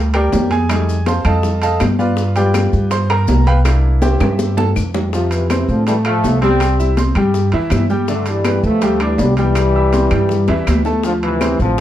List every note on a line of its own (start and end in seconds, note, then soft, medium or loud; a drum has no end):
0.00 0.29 D2 loud
0.00 0.65 G3 medium
0.14 0.49 G4 medium
0.14 0.49 A#4 medium
0.14 0.49 D5 medium
0.14 0.49 G5 loud
0.14 high bongo soft
0.14 high conga soft
0.14 high timbale loud
0.14 claves medium
0.32 1.19 F2 medium
0.32 high bongo soft
0.32 low bongo medium
0.32 high conga medium
0.32 low timbale medium
0.32 maracas medium
0.51 1.03 G#4 medium
0.51 1.03 G#5 loud
0.51 high bongo soft
0.51 high conga medium
0.51 high timbale medium
0.51 maracas soft
0.69 0.94 G3 medium
0.69 0.94 A3 medium
0.69 0.95 D#4 medium
0.69 high bongo medium
0.69 high timbale loud
0.69 claves medium
0.69 maracas medium
0.88 high conga soft
0.88 maracas medium
1.06 1.25 C5 medium
1.06 1.24 F5 medium
1.06 1.24 A5 medium
1.06 1.25 C6 medium
1.06 high bongo medium
1.06 high conga medium
1.06 high timbale medium
1.06 low timbale medium
1.06 maracas medium
1.25 1.76 F2 loud
1.25 1.60 A4 medium
1.25 1.60 D#5 medium
1.25 1.60 F5 medium
1.25 1.60 A5 medium
1.25 high bongo soft
1.25 high conga soft
1.25 low conga medium
1.25 high timbale medium
1.25 claves medium
1.25 maracas soft
1.43 high bongo medium
1.43 high conga soft
1.43 low conga medium
1.43 maracas medium
1.62 1.80 A4 medium
1.62 1.81 D#5 medium
1.62 1.80 F5 medium
1.62 1.80 A5 loud
1.62 high bongo soft
1.62 high conga soft
1.62 high timbale medium
1.62 maracas medium
1.80 2.67 G2 medium
1.80 high bongo soft
1.80 low bongo medium
1.80 high conga medium
1.80 high timbale medium
1.80 low timbale medium
1.80 claves medium
1.80 maracas medium
1.99 2.33 F4 medium
1.99 2.33 B4 medium
1.99 2.33 D5 medium
1.99 2.33 F5 medium
1.99 high bongo soft
1.99 high conga medium
1.99 maracas soft
2.17 high bongo medium
2.17 high conga soft
2.17 maracas medium
2.36 3.61 G3 medium
2.36 3.61 B3 soft
2.36 3.62 F4 medium
2.36 2.88 G4 medium
2.36 2.88 B4 medium
2.36 2.88 D5 medium
2.36 2.87 G5 loud
2.36 high conga soft
2.36 high timbale medium
2.36 maracas medium
2.54 high bongo medium
2.54 high conga loud
2.54 high timbale medium
2.54 low timbale medium
2.54 claves medium
2.54 maracas medium
2.72 3.24 G2 loud
2.72 high bongo soft
2.72 high conga soft
2.72 maracas soft
2.91 3.09 C5 medium
2.91 3.09 C6 loud
2.91 high bongo medium
2.91 high conga soft
2.91 high timbale medium
2.91 maracas medium
3.10 3.44 A#4 medium
3.10 3.44 A#5 loud
3.10 high bongo soft
3.10 high conga soft
3.10 high timbale loud
3.10 claves medium
3.28 4.15 C2 medium
3.28 high bongo soft
3.28 low bongo medium
3.28 high conga medium
3.28 low timbale medium
3.28 maracas medium
3.47 3.58 B4 medium
3.47 3.58 F5 medium
3.47 3.58 G5 medium
3.47 3.58 B5 loud
3.47 high bongo soft
3.47 high conga medium
3.47 high timbale medium
3.47 maracas soft
3.65 4.17 A#3 medium
3.65 4.18 D4 medium
3.65 4.18 E4 medium
3.65 high bongo medium
3.65 high conga soft
3.65 high timbale loud
3.65 claves medium
3.65 maracas medium
3.84 high conga soft
4.02 4.54 G4 medium
4.02 4.54 C5 medium
4.02 4.53 E5 medium
4.02 4.53 G5 medium
4.02 high bongo medium
4.02 high conga medium
4.02 high timbale medium
4.02 maracas medium
4.20 4.72 G2 loud
4.20 high bongo loud
4.20 high conga soft
4.20 low conga medium
4.20 high timbale medium
4.20 claves medium
4.20 maracas soft
4.39 high bongo medium
4.39 high conga loud
4.39 maracas medium
4.57 4.69 A4 medium
4.57 4.68 A5 loud
4.57 low bongo loud
4.57 high conga medium
4.57 low timbale medium
4.76 5.63 F2 medium
4.76 low bongo medium
4.76 claves medium
4.76 maracas medium
4.94 low bongo medium
4.94 low conga medium
4.94 low timbale medium
4.94 maracas soft
5.13 5.31 C3 medium
5.13 5.43 F3 medium
5.13 5.30 F3 medium
5.13 5.44 F4 medium
5.13 5.44 F5 medium
5.13 high bongo medium
5.13 high conga soft
5.13 maracas medium
5.31 5.50 C3 medium
5.31 5.49 E3 medium
5.31 high conga soft
5.31 high timbale medium
5.31 maracas medium
5.50 5.68 C3 medium
5.50 5.67 E3 medium
5.50 5.80 C4 medium
5.50 5.80 C5 medium
5.50 5.80 C6 medium
5.50 high bongo medium
5.50 high conga loud
5.50 high timbale medium
5.50 low timbale medium
5.50 claves medium
5.50 maracas medium
5.68 6.20 A2 medium
5.68 5.87 D3 medium
5.68 5.87 F3 medium
5.68 high bongo soft
5.68 maracas soft
5.87 5.96 E3 medium
5.87 5.95 G3 medium
5.87 6.02 A3 medium
5.87 6.02 A4 medium
5.87 6.02 A5 medium
5.87 high bongo medium
5.87 high conga soft
5.87 high timbale medium
5.87 maracas medium
6.05 6.40 F3 medium
6.05 6.40 A3 loud
6.05 6.36 F4 medium
6.05 6.36 F5 medium
6.05 6.36 F6 medium
6.05 high bongo soft
6.05 high conga soft
6.05 high timbale loud
6.05 claves medium
6.24 7.10 C2 medium
6.24 high bongo soft
6.24 low bongo loud
6.24 high conga medium
6.24 low timbale medium
6.24 maracas medium
6.42 6.73 G3 medium
6.42 6.94 G3 medium
6.42 6.93 C4 loud
6.42 6.73 G4 medium
6.42 6.73 G5 medium
6.42 high bongo soft
6.42 high conga medium
6.42 high timbale medium
6.42 maracas soft
6.60 high bongo medium
6.60 high timbale loud
6.60 claves medium
6.60 maracas medium
6.79 6.94 E4 medium
6.79 6.94 E5 medium
6.79 6.94 E6 medium
6.79 high conga soft
6.79 maracas medium
6.97 7.13 C4 medium
6.97 7.13 C5 medium
6.97 7.13 C6 medium
6.97 high bongo medium
6.97 high conga loud
6.97 high timbale medium
6.97 low timbale medium
6.97 maracas medium
7.15 7.50 G2 loud
7.15 7.47 G3 medium
7.15 7.47 G4 medium
7.15 7.47 G5 medium
7.15 high bongo soft
7.15 high conga soft
7.15 low conga medium
7.15 high timbale medium
7.15 claves medium
7.15 maracas soft
7.34 high bongo medium
7.34 high conga soft
7.34 maracas medium
7.52 7.70 F2 medium
7.52 7.83 E3 medium
7.52 7.84 E4 medium
7.52 7.84 E5 medium
7.52 high bongo soft
7.52 high conga soft
7.52 high timbale medium
7.70 8.58 G2 medium
7.70 high bongo soft
7.70 low bongo medium
7.70 high conga medium
7.70 high timbale medium
7.70 low timbale medium
7.70 claves medium
7.70 maracas medium
7.90 8.05 G3 medium
7.90 8.05 G4 medium
7.90 8.05 G5 medium
7.90 high bongo soft
7.90 high conga medium
7.90 maracas soft
8.08 8.39 D3 medium
8.08 8.26 D3 medium
8.08 8.26 A3 medium
8.08 8.39 D4 medium
8.08 8.39 D5 medium
8.08 high bongo medium
8.08 high conga soft
8.08 maracas medium
8.26 8.65 E3 medium
8.26 8.64 G3 medium
8.26 high conga soft
8.26 high timbale medium
8.26 maracas medium
8.45 8.76 B3 medium
8.45 8.76 B4 medium
8.45 8.76 B5 medium
8.45 high bongo medium
8.45 high conga medium
8.45 high timbale loud
8.45 low timbale medium
8.45 claves medium
8.45 maracas medium
8.63 9.15 D2 loud
8.63 8.99 F3 medium
8.63 8.99 A3 loud
8.63 high bongo soft
8.63 high conga soft
8.63 maracas soft
8.82 8.97 G3 medium
8.82 8.98 G4 medium
8.82 8.98 G5 medium
8.82 high bongo medium
8.82 high conga soft
8.82 high timbale medium
8.82 maracas medium
9.00 9.19 E3 medium
9.00 9.17 G3 medium
9.00 9.31 D4 medium
9.00 9.31 D5 medium
9.00 9.31 D6 medium
9.00 high bongo soft
9.00 high conga soft
9.00 high timbale medium
9.00 claves medium
9.18 10.06 C2 medium
9.18 9.37 D3 medium
9.18 9.36 G3 medium
9.18 high bongo soft
9.18 low bongo medium
9.18 high conga medium
9.18 low timbale medium
9.18 maracas medium
9.37 10.82 E3 medium
9.37 10.81 G3 loud
9.37 9.68 G3 medium
9.37 9.68 G4 medium
9.37 9.68 G5 medium
9.37 high bongo soft
9.37 high conga medium
9.37 high timbale medium
9.37 maracas soft
9.55 high bongo medium
9.55 high timbale medium
9.55 claves medium
9.55 maracas medium
9.75 9.90 E4 medium
9.75 9.90 E5 medium
9.75 9.90 E6 medium
9.75 high conga soft
9.93 10.08 C4 medium
9.93 10.09 C5 medium
9.93 10.09 C6 medium
9.93 high bongo medium
9.93 high conga medium
9.93 high timbale medium
9.93 low timbale medium
9.93 maracas medium
10.11 10.46 G2 loud
10.11 10.42 G3 medium
10.11 10.42 G4 medium
10.11 10.42 G5 medium
10.11 high bongo soft
10.11 high conga soft
10.11 low conga medium
10.11 high timbale medium
10.11 claves medium
10.11 maracas soft
10.29 high bongo medium
10.29 high conga soft
10.29 low conga medium
10.29 maracas medium
10.48 10.66 E2 medium
10.48 10.79 E3 medium
10.48 10.79 E4 medium
10.48 10.79 E5 medium
10.48 high bongo loud
10.48 high conga soft
10.48 high timbale medium
10.67 11.54 D2 medium
10.67 high conga medium
10.67 high timbale medium
10.67 low timbale medium
10.67 claves medium
10.67 maracas medium
10.85 11.01 A3 medium
10.85 11.01 A4 medium
10.85 11.01 A5 medium
10.85 low bongo medium
10.85 high conga medium
10.85 maracas soft
11.04 11.14 D3 medium
11.04 11.34 F3 medium
11.04 11.13 F3 medium
11.04 11.34 F4 medium
11.04 11.35 F5 medium
11.04 high bongo medium
11.04 high conga soft
11.04 maracas medium
11.22 11.58 C3 medium
11.22 11.57 E3 medium
11.22 high conga soft
11.22 high timbale medium
11.41 11.71 C4 medium
11.41 11.71 C5 medium
11.41 11.71 C6 medium
11.41 high bongo medium
11.41 high conga medium
11.41 high timbale medium
11.41 low timbale medium
11.41 claves medium
11.41 maracas medium
11.59 11.80 A1 loud
11.59 11.80 D3 medium
11.59 11.80 F3 loud
11.59 high bongo soft
11.59 high conga soft
11.59 maracas soft